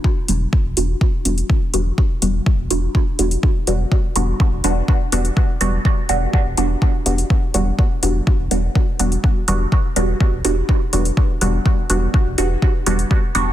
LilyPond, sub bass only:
\new Staff \with { instrumentName = "Sub bass" } { \clef bass \time 4/4 \key e \minor \tempo 4 = 124 r8 e,,16 r8 e,,16 e,,16 r8. e,,16 r8. e,,16 r16 | r8 e,,16 r8 e,,16 e,,16 r8. e,,16 r8. e,,16 r16 | r8 e,,16 r8 e,,16 e,,16 r8. e,,16 r8. e,,16 r16 | r8 e,,16 r8 e,,16 e,,16 r8. e,,16 r8. e,,16 r16 |
r8 e,,16 r8 e,,16 e,,16 r8. e,,16 r8. e,,16 r16 | r8 e,,16 r8 e,,16 e,,16 r8. e,,16 r8. e,,16 r16 | r8 e,,16 r8 e,,16 e,,16 r8. e,,16 r8. e,,16 r16 | }